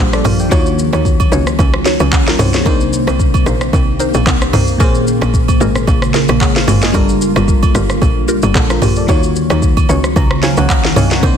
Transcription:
Already playing: ambient pad F3 A#3 D4 G4, fm electric piano G3 D4 F4 A4 A#4
0.00 log drum bass A#1, fm electric piano G4 C5
0.13 fm electric piano A4 D5, cross-stick, shaker
0.24 log drum bass A#1, synth pluck F4 G4 A#4, fm electric piano C5 F5, mid tom, open hi-hat, high agogo, shaker
0.39 fm electric piano D5 G5, shaker
0.49 log drum bass D#2, fm electric piano D#3 A#3 F4 F#4, ambient pad D#3 F#3 A#3 C#4, synth pluck D#4 F#4 C#5, kick, high agogo, shaker
0.54 fm electric piano C#5
0.66 shaker
0.79 shaker
0.93 log drum bass D#2, synth pluck D#4 F#4 C#5, cross-stick, high agogo, shaker
1.05 kick, shaker
1.20 kick, high agogo, shaker
1.32 log drum bass C#2, synth pluck D#4 F#4 C#5, shaker
1.47 cross-stick, shaker
1.59 log drum bass C#2, kick, high agogo, shaker
1.74 cross-stick
1.85 synth pluck D#4 F#4 C#5, snare, shaker
2.00 log drum bass C#2, high agogo, shaker
2.12 kick, clap, low woodblock, shaker
2.27 fm electric piano F4 A#4, snare, shaker
2.39 log drum bass C2, synth pluck D#4 F#4 C#5, fm electric piano F#4 C5, mid tom, open hi-hat, high agogo, shaker
2.53 fm electric piano G#4 C#5, snare, shaker
2.64 log drum bass C2, fm electric piano C3 A#3 D4 D#4, ambient pad C4 G4, synth pluck D#4 A#4 C5, kick, high agogo, shaker
2.69 fm electric piano C5
2.81 shaker
2.93 shaker
3.07 log drum bass C2, synth pluck D#4 A#4 C5, cross-stick, high agogo, shaker
3.20 kick, shaker
3.34 kick, high agogo, shaker
3.46 log drum bass A#1, synth pluck D#4 A#4 C5, cross-stick, shaker
3.61 cross-stick, shaker
3.73 log drum bass C2, kick, high agogo, shaker
4.00 synth pluck D#4 A#4 C5, shaker
4.14 log drum bass A#1, high agogo, shaker
4.27 log drum bass C2, kick, clap, low woodblock, shaker
4.41 cross-stick, shaker
4.53 log drum bass C2, synth pluck D#4 A#4 C5, mid tom, open hi-hat, high agogo, shaker
4.67 shaker
4.78 log drum bass A#1, fm electric piano A#2 A#3 C#4 G#4, ambient pad C#3 G#3 F4, synth pluck C#4 G#4 A#4, kick, high agogo, shaker
4.83 fm electric piano C5
4.95 shaker
5.07 shaker
5.21 log drum bass A#1, synth pluck C#4 G#4 A#4, cross-stick, high agogo, shaker
5.34 kick, shaker
5.48 kick, high agogo, shaker
5.60 log drum bass G#1, synth pluck C#4 G#4 A#4, shaker
5.75 cross-stick, shaker
5.87 log drum bass A#1, kick, high agogo, shaker
6.02 cross-stick, shaker
6.14 synth pluck C#4 G#4 A#4, snare, shaker
6.28 log drum bass A#1, cross-stick, high agogo, shaker
6.41 fm electric piano G#4 C#5, kick, clap, low woodblock, shaker
6.56 fm electric piano C5 F5, snare, shaker
6.67 log drum bass G#1, synth pluck C#4 G#4 A#4, mid tom, open hi-hat, high agogo, shaker
6.82 fm electric piano D#5 G#5, snare, shaker
6.92 log drum bass G1, ambient pad D3 G3, fm electric piano G3 D4 F4 A4, synth pluck F4 G4 A#4, kick, high agogo, shaker
6.98 fm electric piano A#4
7.09 shaker
7.22 shaker
7.36 log drum bass G1, synth pluck F4 G4 A#4, cross-stick, high agogo, shaker
7.48 kick, shaker
7.63 kick, high agogo, shaker
7.75 log drum bass G1, synth pluck F4 G4 A#4, cross-stick, shaker
7.90 cross-stick, shaker
8.02 log drum bass A#1, kick, high agogo, shaker
8.28 synth pluck F4 G4 A#4, shaker
8.42 log drum bass G1, high agogo, shaker
8.55 log drum bass A#1, fm electric piano D4 A4, kick, clap, low woodblock, shaker
8.70 fm electric piano F4 A#4, cross-stick, shaker
8.82 log drum bass A#1, synth pluck F4 G4 A#4, fm electric piano G4 C5, mid tom, open hi-hat, high agogo, shaker
8.96 fm electric piano A4 D5, shaker
9.07 log drum bass D#2, ambient pad C#3 D#3 F#3, fm electric piano D#3 A#3 F4 F#4, synth pluck D#4 F#4 C#5, kick, high agogo, shaker
9.12 fm electric piano C#5
9.23 shaker
9.36 shaker
9.50 log drum bass D#2, synth pluck D#4 F#4 C#5, cross-stick, high agogo, shaker
9.62 kick, shaker
9.77 kick, high agogo, shaker
9.89 log drum bass C#2, synth pluck D#4 F#4 C#5, fm electric piano C#6, shaker
10.04 cross-stick, shaker
10.16 log drum bass C#2, fm electric piano A#5, kick, high agogo, shaker
10.31 cross-stick
10.42 synth pluck D#4 F#4 C#5, fm electric piano C5 F5 G#5, snare, shaker
10.57 log drum bass C#2, fm electric piano C#5 F#5, high agogo, shaker
10.69 fm electric piano F5 F#5 A#5, kick, clap, low woodblock, shaker
10.84 snare, shaker
10.96 log drum bass C2, synth pluck D#4 F#4 C#5, fm electric piano D#5 F5 G#5, mid tom, open hi-hat, high agogo, shaker
11.10 fm electric piano C#5 F#5, snare, shaker
11.21 log drum bass C2, fm electric piano C3 A#3 D4 D#4, synth pluck D#4 A#4 C5, kick, high agogo, shaker
11.26 fm electric piano C5

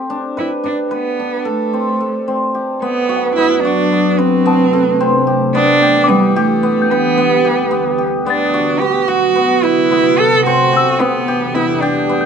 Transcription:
Already playing: hammered dulcimer C4 G4 A4
0.10 hammered dulcimer D4
0.37 cello E4, hammered dulcimer B4
0.64 hammered dulcimer D4, cello D4
0.91 cello B3, hammered dulcimer B4
1.20 hammered dulcimer D4
1.45 cello A3, hammered dulcimer A4
1.73 hammered dulcimer C4
2.00 hammered dulcimer A4
2.28 hammered dulcimer C4
2.55 hammered dulcimer G4
2.82 ambient pad F#3 D4 B4, hammered dulcimer B3, cello B3
3.09 hammered dulcimer F#4
3.17 celesta F#5
3.36 hammered dulcimer B3, cello E4
3.64 cello D4, hammered dulcimer F#4
3.92 hammered dulcimer B3
4.18 ambient pad C3 A3 C4, cello C4, hammered dulcimer B4
4.46 hammered dulcimer B3, celesta A5
4.73 hammered dulcimer A4
5.00 hammered dulcimer C4
5.27 hammered dulcimer G4
5.55 ambient pad E3 D4 G4, hammered dulcimer B3, cello D4
5.82 hammered dulcimer G4
6.04 celesta D6
6.09 cello G3, hammered dulcimer B3
6.36 cello A3, hammered dulcimer G4
6.63 hammered dulcimer B3
6.82 celesta G6
6.90 ambient pad D3 B3, cello B3, hammered dulcimer B4
7.18 hammered dulcimer B3
7.45 hammered dulcimer G4
7.71 hammered dulcimer B3
7.98 hammered dulcimer G4
8.26 hammered dulcimer B3, cello D4, ambient pad F#4, celesta A6
8.54 hammered dulcimer F#4
8.79 hammered dulcimer B3, cello G4
9.08 hammered dulcimer F#4, cello F#4
9.35 hammered dulcimer B3
9.63 ambient pad C3 A4, cello E4, hammered dulcimer B4
9.91 hammered dulcimer B3
10.19 cello A4, hammered dulcimer A4
10.46 hammered dulcimer C4, cello F#4
10.73 hammered dulcimer G4
10.77 celesta E6
11.00 ambient pad E3 D4 G4, hammered dulcimer B3, cello B3
11.28 hammered dulcimer G4
11.54 hammered dulcimer B3, cello E4
11.80 cello D4, hammered dulcimer G4
12.09 hammered dulcimer B3
12.21 celesta G6

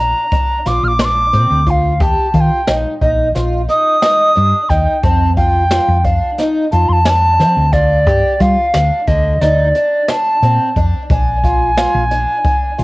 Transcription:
Already playing: fingered electric bass A#1, flute A#5
0.00 twelve-string acoustic guitar D4
0.32 twelve-string acoustic guitar D4, kick, closed hi-hat
0.66 fingered electric bass A#1, twelve-string acoustic guitar F4, flute D6, snare, closed hi-hat
0.83 fingered electric bass A#1, flute F6
0.88 flute D6
0.99 twelve-string acoustic guitar D4, flute C6, snare, closed hi-hat
1.05 flute D6
1.33 fingered electric bass A#2, twelve-string acoustic guitar C4, closed hi-hat
1.50 fingered electric bass D2
1.67 twelve-string acoustic guitar F4, flute F5, kick, closed hi-hat
2.00 fingered electric bass D#2, twelve-string acoustic guitar G4, flute A5, kick, closed hi-hat
2.34 fingered electric bass D#3, twelve-string acoustic guitar F4, flute A5, kick, closed hi-hat
2.41 flute G5
2.67 fingered electric bass A#1, twelve-string acoustic guitar D#4, snare, closed hi-hat
3.01 fingered electric bass A#1, twelve-string acoustic guitar D#4, flute D#5, kick, closed hi-hat
3.35 fingered electric bass A#1, twelve-string acoustic guitar F4, snare, closed hi-hat
3.69 twelve-string acoustic guitar D#4, flute D#6, closed hi-hat
4.02 twelve-string acoustic guitar D#4, snare, closed hi-hat
4.35 fingered electric bass G2, twelve-string acoustic guitar D4, closed hi-hat
4.69 fingered electric bass D#2, twelve-string acoustic guitar D#4, flute G5, kick, snare, closed hi-hat
5.03 fingered electric bass F2, twelve-string acoustic guitar C4, flute A5, kick, closed hi-hat
5.36 twelve-string acoustic guitar F4, flute G5, kick, closed hi-hat
5.71 twelve-string acoustic guitar F4, snare, closed hi-hat
5.88 fingered electric bass F2
6.04 twelve-string acoustic guitar D4, flute F5, kick, closed hi-hat
6.38 twelve-string acoustic guitar D#4, snare, closed hi-hat
6.72 fingered electric bass F2, twelve-string acoustic guitar F4, flute A5, closed hi-hat
6.89 fingered electric bass F2, flute A5 C6
7.05 twelve-string acoustic guitar D4, flute G#5, snare, closed hi-hat
7.09 flute A5
7.40 fingered electric bass F3, twelve-string acoustic guitar C4, snare, closed hi-hat
7.57 fingered electric bass D2
7.73 twelve-string acoustic guitar F4, flute D5, kick, snare, closed hi-hat
8.07 fingered electric bass G2, twelve-string acoustic guitar G4, kick, closed hi-hat
8.40 fingered electric bass G3, twelve-string acoustic guitar F4, flute F5, kick, snare, closed hi-hat
8.74 fingered electric bass D2, twelve-string acoustic guitar D4, snare, closed hi-hat
9.07 fingered electric bass D2, twelve-string acoustic guitar D3, flute D#5, kick, closed hi-hat
9.41 fingered electric bass D2, twelve-string acoustic guitar D#4, flute D5, snare, closed hi-hat
9.75 twelve-string acoustic guitar D4, closed hi-hat
10.08 twelve-string acoustic guitar D4, flute A5, snare, closed hi-hat
10.42 fingered electric bass A#2, twelve-string acoustic guitar C4, closed hi-hat
10.76 fingered electric bass F2, twelve-string acoustic guitar D4, kick, closed hi-hat
11.10 fingered electric bass A#1, twelve-string acoustic guitar D4, flute G#5, kick, closed hi-hat
11.44 twelve-string acoustic guitar F4, kick, closed hi-hat
11.77 twelve-string acoustic guitar F4, snare, closed hi-hat
11.95 fingered electric bass A#1
12.11 twelve-string acoustic guitar D4, closed hi-hat
12.45 twelve-string acoustic guitar D4, kick, closed hi-hat
12.78 fingered electric bass A#1, twelve-string acoustic guitar F4, closed hi-hat

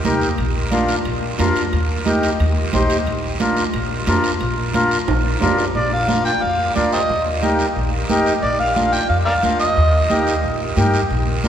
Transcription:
0.04 upright bass C2, accordion D#4 G4 A#4, high conga, short guiro
0.21 short guiro
0.37 upright bass A#1, high conga, high timbale, long guiro
0.71 accordion D4 F4 A#4, high conga, high timbale, short guiro
0.89 high timbale, short guiro
1.05 upright bass A#1, high conga, high timbale, long guiro
1.39 upright bass F2, accordion D4 F4 A#4, high conga, high timbale, low timbale, short guiro
1.56 high timbale, short guiro
1.73 upright bass D#2, high conga, high timbale, long guiro
2.05 accordion D#4 G4 A#4, high conga, high timbale, short guiro
2.23 high timbale, short guiro
2.40 upright bass D#2, high conga, high timbale, long guiro
2.73 upright bass A#1, accordion D#4 G4 C5, high conga, high timbale, low timbale, short guiro
2.90 high timbale, short guiro
3.06 upright bass A#1, high conga, high timbale, long guiro
3.40 accordion D4 F4 A#4, high conga, high timbale, short guiro
3.57 high timbale, short guiro
3.74 upright bass A#1, high conga, high timbale, long guiro
4.07 upright bass F2, accordion D4 F4 A#4, high conga, high timbale, low timbale, short guiro
4.24 high timbale, short guiro
4.41 upright bass A#1, high conga, high timbale, long guiro
4.74 accordion D4 F4 A#4, high conga, high timbale, short guiro
4.91 high timbale, short guiro
5.08 upright bass A#1, high conga, high timbale, long guiro
5.24 high timbale
5.41 upright bass F2, accordion D4 F4 A#4, high conga, low timbale, short guiro
5.58 low timbale, short guiro
5.75 upright bass A#1, harmonica D5, high conga, long guiro
5.93 harmonica F5
6.08 accordion D4 F4 A#4, harmonica F5, high conga, short guiro
6.25 harmonica G5, short guiro
6.42 upright bass F2, harmonica F5, high conga, long guiro
6.75 upright bass D2, accordion D4 F4 A#4, harmonica D5, high conga, short guiro
6.93 harmonica G4 C5 D#5, short guiro
7.09 upright bass D#2, high conga, long guiro
7.42 accordion D#4 G4 A#4, high conga, short guiro
7.59 short guiro
7.76 upright bass A#1, high conga, long guiro
8.09 upright bass F2, accordion D#4 G4 A#4, high conga, short guiro
8.26 short guiro
8.42 upright bass A#1, harmonica D5, high conga, long guiro
8.60 harmonica F5
8.75 accordion D4 F4 A#4, harmonica F5, high conga, short guiro
8.93 harmonica G5, short guiro
9.09 upright bass F2, harmonica F5, high conga, long guiro
9.25 harmonica A#4 D5 F5
9.43 upright bass D2, accordion D4 F4 A#4, high conga, short guiro
9.60 harmonica D#5, short guiro
9.76 upright bass D#2, high conga, long guiro
10.10 accordion D#4 G4 A#4, high conga, short guiro
10.27 short guiro
10.43 upright bass A#1, high conga, long guiro
10.77 upright bass G2, accordion D#4 G4 A#4, high conga, short guiro
10.94 short guiro
11.10 upright bass A#1, high conga, long guiro
11.44 accordion D4 F4, high conga, short guiro

